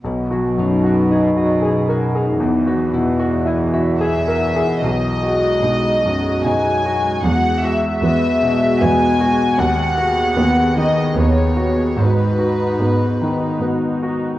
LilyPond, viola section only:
\new Staff \with { instrumentName = "Viola section" } { \time 3/4 \key b \major \tempo 4 = 75 r2. | r2. | r8 <gis fis'>4 <gis fis'>4 <gis fis'>8 | <gis fis'>8 <gis fis'>4 <gis fis'>4 <gis fis'>8 |
r8 <b gis'>4 <b gis'>4 <b gis'>8 | <dis' fis'>8 <dis' fis'>4 <dis' fis'>4 <dis' fis'>8 | }